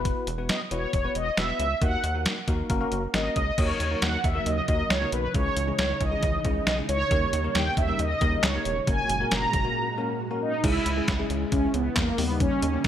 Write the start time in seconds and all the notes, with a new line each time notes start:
Already playing: E1 B3 E4 F#4 B4
0.05 kick, closed hi-hat
0.27 E1, closed hi-hat
0.38 B3 E4 F#4 B4
0.49 D#5, snare, closed hi-hat
0.71 E1 B3 E4 F#4 B4 C#5, closed hi-hat
0.93 E1 C#5, kick, closed hi-hat
1.04 B3 E4 F#4 B4
1.15 E1 D#5, closed hi-hat
1.37 E1 B3 E4 F#4 B4 E5, snare, closed hi-hat
1.59 C#2 E5, closed hi-hat
1.82 D#2 A#3 D#4 F#4 A#4 F#5, kick, closed hi-hat
2.04 D#2, closed hi-hat
2.15 A#3 D#4 F#4 A#4
2.26 snare, closed hi-hat
2.48 D#2 A#3 D#4 F#4 A#4, kick, closed hi-hat
2.70 F#1 A#3 C#4 F#4 A#4, kick, closed hi-hat
2.81 A#3 C#4 F#4 A#4
2.92 F#1, closed hi-hat
3.14 G#1 A#3 C#4 F#4 A#4 D#5, snare, closed hi-hat
3.36 C#2 D#5, kick, closed hi-hat
3.58 D#2 C#3 F#3 A#3 D#4 F#4 A#4 C#5, kick, closed hi-hat, crash
3.80 D#2, closed hi-hat
3.91 A#3 D#4 F#4 A#4
4.02 D#2 F#5, snare, closed hi-hat
4.24 D#2 E5, kick, closed hi-hat
4.35 A#3 D#4 F#4 A#4
4.46 D#2 D#5, closed hi-hat
4.68 D#2 A#3 D#4 F#4 A#4 D#5, kick, closed hi-hat
4.90 C#2 C#5, snare, closed hi-hat
5.01 A#3 D#4 F#4 A#4
5.12 B1 B4, closed hi-hat
5.34 C#2 E3 G#3 C#4 E4 G#4 C#5, kick, closed hi-hat
5.57 C#2, closed hi-hat
5.68 G#3 C#4 E4 G#4
5.79 C#2 C#5, snare, closed hi-hat
6.01 C#2 D#5, kick, closed hi-hat
6.12 G#3 C#4 E4 G#4
6.23 C#2, kick, closed hi-hat
6.45 C#2 G#3 C#4 E4 G#4, kick, closed hi-hat
6.67 B1 D#5, snare, closed hi-hat
6.78 G#3 C#4 E4 G#4
6.89 C#2 C#5, closed hi-hat
7.11 D#2 G3 A#3 D#4 G4 A#4, kick, closed hi-hat
7.33 D#2, closed hi-hat
7.44 A#3 D#4 G4 A#4
7.55 D#2 G5, snare, closed hi-hat
7.77 D#2 E5, kick, closed hi-hat
7.88 A#3 D#4 G4 A#4
7.99 D#2 D#5, closed hi-hat
8.21 D#2 A#3 D#4 G4 A#4, kick, closed hi-hat
8.43 C#2 C#5, snare, clap, closed hi-hat
8.54 A#3 D#4 G4 A#4
8.65 E1, closed hi-hat
8.87 F#1 A#2 G#3 A#3 C#4 F#4 A#4 G#5, kick, closed hi-hat
9.09 F#1, closed hi-hat
9.21 A#3 C#4 F#4 A#4
9.31 F#1 A#5, snare, closed hi-hat
9.53 F#1, kick, closed hi-hat
9.65 A#3 C#4 F#4 A#4
9.98 A#3 C#4 F#4 A#4
10.31 A#3 C#4 F#4 A#4
10.42 D#4
10.64 C#2 C#3 G#3 C#4 E4 G#4, kick, closed hi-hat, crash
10.86 C#2, closed hi-hat
10.97 G#3 C#4 E4 G#4
11.08 C#2, kick, snare, closed hi-hat
11.19 G#3 C#4 E4 G#4
11.30 C#2, closed hi-hat
11.52 C#2 C#4, kick, closed hi-hat
11.74 C#2 B3, closed hi-hat
11.96 E2 A#3, kick, snare, clap, closed hi-hat
12.18 D#2 G3 A#3 B3 D#4 G4, open hi-hat
12.40 C#4, kick, closed hi-hat
12.62 D#2 C#4, closed hi-hat
12.73 G3 A#3 D#4 G4
12.84 D#2 C#4, kick, snare, closed hi-hat